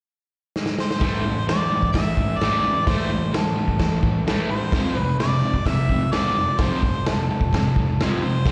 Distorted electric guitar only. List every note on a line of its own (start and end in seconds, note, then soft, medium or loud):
1.00 1.22 A2 medium
1.00 1.23 E3 medium
1.00 1.23 A3 loud
1.25 1.45 A2 medium
1.25 1.45 E3 medium
1.48 1.68 A2 medium
1.48 1.68 E3 medium
1.71 1.91 A2 medium
1.71 1.92 E3 medium
1.94 2.15 A2 medium
1.94 2.15 E3 medium
2.17 2.38 A2 medium
2.17 2.38 E3 medium
2.41 2.62 A2 medium
2.41 2.63 E3 medium
2.41 2.63 A3 medium
2.64 2.85 A2 medium
2.64 2.85 E3 medium
2.87 3.08 A2 medium
2.87 3.09 E3 medium
2.87 3.09 A3 loud
3.10 3.30 A2 medium
3.10 3.31 E3 medium
3.32 3.53 A2 medium
3.32 3.53 E3 medium
3.55 3.76 A2 medium
3.55 3.77 E3 medium
3.79 4.00 A2 medium
3.79 4.00 E3 medium
4.03 4.23 A2 medium
4.03 4.23 E3 medium
4.27 4.48 A2 medium
4.27 4.49 E3 medium
4.27 4.49 A3 loud
4.50 4.71 A2 medium
4.50 4.71 E3 medium
4.74 4.95 F2 medium
4.74 4.95 C3 medium
4.74 4.96 F3 loud
4.96 5.17 F2 medium
4.96 5.17 C3 medium
5.20 5.41 F2 medium
5.20 5.41 C3 medium
5.44 5.64 F2 medium
5.44 5.64 C3 medium
5.67 5.87 F2 medium
5.67 5.88 C3 medium
5.91 6.11 F2 medium
5.91 6.11 C3 medium
6.12 6.34 F2 medium
6.12 6.34 C3 medium
6.12 6.35 F3 loud
6.36 6.57 F2 medium
6.36 6.57 C3 medium
6.58 6.80 F2 medium
6.58 6.81 C3 medium
6.58 6.81 F3 loud
6.82 7.03 F2 medium
6.82 7.03 C3 medium
7.07 7.27 F2 medium
7.07 7.27 C3 medium
7.30 7.50 F2 medium
7.30 7.51 C3 medium
7.54 7.74 F2 medium
7.54 7.74 C3 medium
7.77 7.97 F2 medium
7.77 7.98 C3 medium
8.00 8.21 F2 medium
8.00 8.21 C3 medium
8.00 8.22 F3 loud
8.24 8.44 F2 medium
8.24 8.44 C3 medium
8.47 8.52 A2 medium
8.47 8.52 E3 medium
8.47 8.52 A3 loud